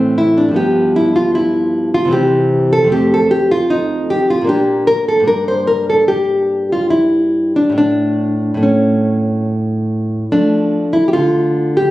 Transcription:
0.00 0.51 A2 medium
0.00 0.51 E3 soft
0.00 0.54 A3 soft
0.00 0.17 C4 medium
0.18 0.37 E4 medium
0.38 0.54 D4 medium
0.48 2.05 G2 soft
0.48 2.06 F3 soft
0.54 2.08 B3 soft
0.54 0.94 G4 medium
0.96 1.15 E4 medium
1.16 1.35 F4 medium
1.35 1.91 E4 medium
1.94 2.12 F4 medium
2.05 2.85 C3 medium
2.05 2.87 E3 soft
2.11 2.88 C4 soft
2.11 2.70 G4 medium
2.73 2.92 A4 medium
2.84 4.41 F2 medium
2.84 4.43 A3 soft
2.90 3.70 C4 soft
2.90 3.12 G4 medium
3.14 3.31 A4 medium
3.31 3.51 G4 medium
3.51 3.71 F4 medium
3.70 4.08 D#4 medium
4.10 4.30 G4 medium
4.30 4.49 F4 medium
4.41 5.21 A#2 medium
4.41 5.22 A#3 soft
4.47 5.24 D4 soft
4.47 4.87 G4 medium
4.87 5.07 A#4 medium
5.08 5.27 A4 medium
5.20 7.69 G2 medium
5.20 7.70 A#3 soft
5.26 7.55 D4 soft
5.26 5.47 A#4 medium
5.48 5.67 C5 medium
5.67 5.88 A#4 medium
5.90 6.08 A4 medium
6.08 6.68 G4 medium
6.72 6.90 F4 medium
6.90 7.52 E4 medium
7.56 7.77 D4 medium
7.70 8.53 A2 soft
7.70 8.56 A3 soft
7.78 8.60 D4 medium
8.54 10.24 A2 soft
8.54 10.25 A3 soft
8.63 9.44 C#4 medium
10.32 10.98 F3 medium
10.32 11.91 A3 soft
10.32 10.92 D4 medium
10.93 11.07 E4 medium
11.08 11.13 G4 soft
11.13 11.80 D3 medium
11.13 11.74 F4 medium
11.77 11.91 G4 medium

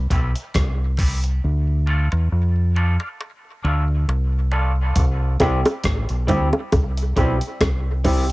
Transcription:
0.10 0.33 B1 medium
0.10 0.21 G3 medium
0.10 0.30 G3 medium
0.10 0.22 C4 medium
0.10 0.30 C4 medium
0.10 0.22 E4 medium
0.10 0.30 E4 medium
0.10 0.30 G4 medium
0.10 kick medium
0.10 closed hi-hat medium
0.10 high bongo soft
0.35 0.44 C3 medium
0.35 closed hi-hat medium
0.54 1.39 C2 medium
0.54 kick loud
0.54 cross-stick loud
0.54 closed hi-hat medium
0.54 high bongo medium
0.79 0.88 C3 medium
0.97 1.09 G3 medium
0.97 1.18 G3 medium
0.97 1.09 C4 medium
0.97 1.18 C4 medium
0.97 1.09 E4 medium
0.97 1.18 E4 medium
0.97 1.18 G4 medium
0.97 kick medium
0.97 open hi-hat medium
0.97 low bongo medium
1.23 1.32 C3 medium
1.23 closed hi-hat soft
1.44 2.09 D2 loud
1.86 1.98 A3 medium
1.86 2.06 A3 medium
1.86 1.98 D4 medium
1.86 2.07 D4 medium
1.86 1.98 F4 medium
1.86 2.07 F4 medium
1.86 2.07 A4 loud
1.86 high bongo medium
2.11 2.20 D2 medium
2.11 2.30 E2 medium
2.11 high bongo medium
2.32 2.97 F2 medium
2.56 2.65 D2 medium
2.56 2.65 A2 medium
2.75 2.86 A3 medium
2.75 2.95 A3 medium
2.75 2.86 D4 medium
2.75 2.95 D4 medium
2.75 2.86 F4 medium
2.75 2.95 F4 medium
2.75 2.95 A4 medium
2.75 low bongo medium
2.99 3.08 D4 medium
2.99 3.09 F4 medium
2.99 high bongo medium
3.21 high bongo medium
3.45 3.53 D2 medium
3.45 3.53 A2 medium
3.63 4.04 D2 medium
3.63 3.74 A3 medium
3.63 3.83 A3 medium
3.63 3.74 D4 medium
3.63 3.83 D4 medium
3.63 3.75 F4 medium
3.63 3.84 F4 medium
3.63 3.84 A4 medium
3.63 high bongo soft
3.88 3.97 D2 medium
3.88 3.97 A2 medium
4.08 4.92 C2 medium
4.08 high bongo medium
4.33 4.41 D2 medium
4.33 4.41 A2 medium
4.51 4.63 A3 medium
4.51 4.71 A3 medium
4.51 4.63 D4 medium
4.51 4.71 D4 medium
4.51 4.63 F4 medium
4.51 4.71 F4 medium
4.51 4.72 A4 medium
4.51 low bongo medium
4.76 4.85 D2 medium
4.76 4.85 A2 medium
4.96 5.36 C2 loud
4.96 kick loud
4.96 closed hi-hat medium
5.40 5.63 C2 loud
5.40 5.59 G3 medium
5.40 5.59 C4 medium
5.40 5.60 E4 medium
5.40 5.60 G4 loud
5.40 kick medium
5.40 cross-stick medium
5.40 closed hi-hat medium
5.40 high bongo medium
5.65 closed hi-hat soft
5.65 high bongo medium
5.84 6.07 A1 medium
5.84 kick loud
5.84 cross-stick loud
5.84 closed hi-hat medium
6.09 6.27 B1 medium
6.09 closed hi-hat soft
6.27 6.51 D2 medium
6.27 6.47 G3 medium
6.27 6.47 C4 medium
6.27 6.47 E4 medium
6.27 6.48 G4 medium
6.27 kick medium
6.27 closed hi-hat medium
6.27 low bongo medium
6.53 high bongo medium
6.72 7.13 C2 medium
6.72 kick loud
6.72 closed hi-hat medium
6.72 high bongo medium
6.97 closed hi-hat medium
7.16 7.40 B1 medium
7.16 7.36 G3 medium
7.16 7.36 C4 medium
7.16 7.36 E4 medium
7.16 7.37 G4 medium
7.16 kick medium
7.16 closed hi-hat medium
7.16 high bongo medium
7.41 closed hi-hat soft
7.61 8.32 C2 medium
7.61 kick loud
7.61 cross-stick loud
7.61 closed hi-hat medium
7.61 high bongo medium
8.04 8.24 G3 medium
8.04 8.24 C4 medium
8.04 8.24 E4 medium
8.04 8.24 G4 medium
8.04 kick medium
8.04 open hi-hat medium
8.04 low bongo medium

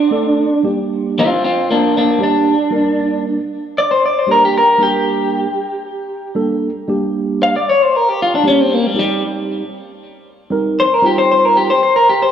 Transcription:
0.00 0.63 D4 loud
0.11 0.45 A3 medium
0.11 0.45 C4 medium
0.11 0.45 D4 medium
0.11 0.46 A4 medium
0.63 1.30 G3 medium
0.63 1.31 A#3 medium
0.63 1.31 D4 medium
0.63 1.31 G4 medium
1.19 1.43 C4 medium
1.19 1.43 F4 medium
1.44 1.68 C4 medium
1.44 1.69 F4 medium
1.71 1.94 A#3 medium
1.71 1.95 D4 medium
1.97 2.20 A#3 medium
1.97 2.21 D4 medium
2.18 2.53 G3 medium
2.18 2.53 A#3 medium
2.18 2.53 D4 medium
2.18 2.53 G4 medium
2.23 3.23 D4 medium
2.70 3.38 G3 medium
2.70 3.38 A#3 medium
2.70 3.38 D4 medium
2.70 3.39 A#4 medium
3.78 3.90 D5 loud
3.91 4.03 C5 medium
4.06 4.19 D5 medium
4.19 4.29 C5 medium
4.27 4.61 G3 medium
4.27 4.61 A#3 medium
4.27 4.61 D4 medium
4.27 4.61 G4 medium
4.31 4.43 A#4 medium
4.45 4.56 G4 medium
4.58 4.81 A#4 medium
4.78 5.45 G3 medium
4.78 5.46 A#3 medium
4.78 5.46 D4 medium
4.78 5.46 A#4 medium
4.83 6.33 G4 loud
6.35 6.69 G3 medium
6.35 6.69 A#3 medium
6.35 6.69 D4 medium
6.35 6.69 A4 medium
6.88 7.54 G3 medium
6.88 7.55 A#3 medium
6.88 7.54 D4 medium
6.88 7.55 G4 medium
7.43 7.54 F5 medium
7.56 7.67 D5 medium
7.69 7.82 C#5 medium
7.82 7.96 C5 medium
7.96 8.09 A#4 loud
8.09 8.19 G4 medium
8.22 8.33 F4 medium
8.35 8.46 D4 medium
8.43 8.77 G3 medium
8.43 8.77 A#3 medium
8.43 8.77 D4 medium
8.43 8.77 G4 medium
8.48 8.61 C#4 medium
8.61 8.74 C4 loud
8.74 8.87 A#3 medium
8.87 8.97 G3 medium
8.94 9.61 G3 medium
8.94 9.62 C4 medium
8.94 9.62 D#4 medium
8.94 9.62 G4 medium
8.99 9.23 G3 loud
10.50 10.84 G3 medium
10.50 10.84 C4 medium
10.50 10.85 D#4 medium
10.50 10.85 A#4 loud
10.80 10.94 C5 loud
10.94 11.05 A#4 medium
11.02 11.69 G3 medium
11.02 11.69 C4 medium
11.02 11.70 D#4 medium
11.02 11.70 F4 medium
11.06 11.18 G4 medium
11.18 11.30 C5 medium
11.32 11.45 C5 loud
11.45 11.56 A#4 loud
11.57 11.69 G4 medium
11.70 11.82 C5 medium
11.83 11.95 C5 medium
11.96 12.08 A#4 medium
12.09 12.21 G4 medium
12.22 12.32 C5 medium

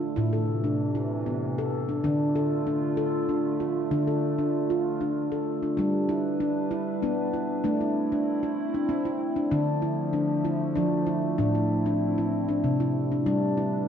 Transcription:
0.00 0.15 D3 medium
0.00 2.00 A3 medium
0.00 0.15 F4 medium
0.00 0.17 F4 medium
0.16 1.11 A2 medium
0.16 2.02 C3 medium
0.16 2.02 E3 medium
0.16 0.33 E4 medium
0.33 0.64 A4 medium
0.64 0.95 D4 medium
0.95 1.26 E4 medium
1.26 1.58 B3 medium
1.58 1.89 A4 medium
1.89 2.03 D4 medium
2.04 2.98 D3 medium
2.04 5.75 D3 medium
2.04 5.74 A3 medium
2.04 2.35 D4 medium
2.04 3.89 F4 medium
2.36 2.66 A4 medium
2.67 2.98 D4 medium
2.97 3.28 A4 medium
3.29 3.60 D4 medium
3.60 3.91 F4 medium
3.91 4.85 D3 medium
3.91 4.07 D4 medium
3.91 5.76 F4 medium
4.07 4.38 A4 medium
4.38 4.69 D4 medium
4.70 5.01 F4 medium
5.01 5.32 D4 medium
5.32 5.63 A4 medium
5.63 5.76 D4 medium
5.77 7.62 G3 medium
5.77 6.72 G3 medium
5.77 7.62 D4 medium
5.77 6.09 D4 medium
5.77 7.62 B4 medium
6.09 6.40 E4 medium
6.40 6.71 D4 medium
6.71 7.02 E4 medium
7.02 7.50 B3 medium
7.02 7.33 D4 medium
7.33 7.65 E4 medium
7.64 8.59 A3 medium
7.64 9.50 A3 medium
7.64 9.50 C4 medium
7.64 7.81 D4 medium
7.64 9.50 E4 medium
7.81 8.12 E4 medium
8.12 8.43 D4 medium
8.43 8.74 E4 medium
8.74 9.06 D4 medium
8.89 9.36 C4 medium
9.05 9.37 E4 medium
9.36 9.50 D4 medium
9.51 11.37 D3 medium
9.51 10.46 D3 medium
9.51 11.37 F3 medium
9.51 13.23 A3 medium
9.51 9.83 D4 medium
9.82 10.14 E4 medium
10.13 10.45 D4 medium
10.45 10.76 E4 medium
10.76 11.24 F3 medium
10.76 11.07 D4 medium
11.07 11.38 E4 medium
11.38 12.33 A2 medium
11.38 13.24 C4 medium
11.38 11.55 D4 medium
11.38 13.24 E4 medium
11.55 11.86 E4 medium
11.86 12.17 D4 medium
12.18 12.49 E4 medium
12.49 12.80 D4 medium
12.64 13.11 C3 medium
12.80 13.11 E4 medium
13.12 13.25 D4 medium
13.26 13.88 G3 medium
13.26 13.88 D4 medium
13.26 13.57 D4 medium
13.26 13.88 B4 medium
13.57 13.88 E4 medium

